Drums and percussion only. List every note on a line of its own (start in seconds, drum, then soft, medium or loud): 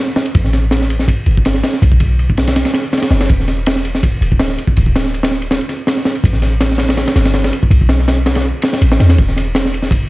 0.08 snare soft
0.16 snare loud
0.26 ride medium
0.35 kick loud
0.35 ride medium
0.45 snare soft
0.53 snare soft
0.53 ride medium
0.71 snare loud
0.71 ride medium
0.81 snare medium
0.90 ride medium
0.99 snare medium
1.08 kick loud
1.08 ride medium
1.26 ride medium
1.37 kick medium
1.45 snare loud
1.45 ride loud
1.54 snare medium
1.63 snare loud
1.63 ride medium
1.74 snare soft
1.82 kick loud
1.82 ride medium
1.92 kick medium
2.00 kick medium
2.00 ride medium
2.19 ride medium
2.30 kick medium
2.37 snare loud
2.37 ride medium
2.47 snare loud
2.47 ride medium
2.56 snare loud
2.56 ride medium
2.65 snare loud
2.65 ride medium
2.74 snare loud
2.74 ride medium
2.93 snare medium
2.93 ride medium
2.98 snare medium
2.98 ride medium
3.02 snare loud
3.02 ride medium
3.11 snare loud
3.11 ride medium
3.21 snare loud
3.21 ride medium
3.29 kick loud
3.29 ride medium
3.40 snare soft
3.48 snare soft
3.48 ride medium
3.66 snare loud
3.66 ride medium
3.76 snare medium
3.85 ride medium
3.95 snare medium
4.03 kick loud
4.03 ride medium
4.22 ride medium
4.32 kick medium
4.39 snare loud
4.39 ride medium
4.49 snare medium
4.58 ride medium
4.67 kick loud
4.77 kick loud
4.77 ride medium
4.86 kick medium
4.96 snare loud
4.96 ride medium
5.06 snare soft
5.14 ride medium
5.23 snare loud
5.23 ride medium
5.31 snare medium
5.42 ride medium
5.51 snare loud
5.51 ride medium
5.61 ride soft
5.69 snare soft
5.69 ride medium
5.87 snare loud
5.87 ride medium
5.97 snare soft
6.05 snare loud
6.15 ride medium
6.24 kick loud
6.24 ride medium
6.33 snare soft
6.42 snare soft
6.42 ride medium
6.61 snare loud
6.61 ride medium
6.71 snare medium
6.78 snare loud
6.78 ride medium
6.89 snare loud
6.89 ride medium
6.97 snare loud
6.97 ride medium
7.07 snare loud
7.07 ride medium
7.16 snare medium
7.16 ride medium
7.25 snare loud
7.25 ride medium
7.34 snare loud
7.34 ride medium
7.44 snare loud
7.44 ride medium
7.53 ride medium
7.63 kick loud
7.71 kick loud
7.71 ride medium
7.81 kick medium
7.89 snare loud
7.89 ride medium
8.00 snare soft
8.08 snare loud
8.08 ride medium
8.26 snare loud
8.26 ride medium
8.35 snare loud
8.35 ride medium
8.62 snare loud
8.62 ride medium
8.73 snare loud
8.73 ride medium
8.82 ride medium
8.92 snare loud
9.00 snare loud
9.00 ride medium
9.09 snare loud
9.09 ride medium
9.18 kick loud
9.18 ride medium
9.29 snare soft
9.36 snare soft
9.36 ride medium
9.55 snare loud
9.55 ride loud
9.65 snare medium
9.74 ride medium
9.82 snare medium
9.91 kick loud
9.91 ride loud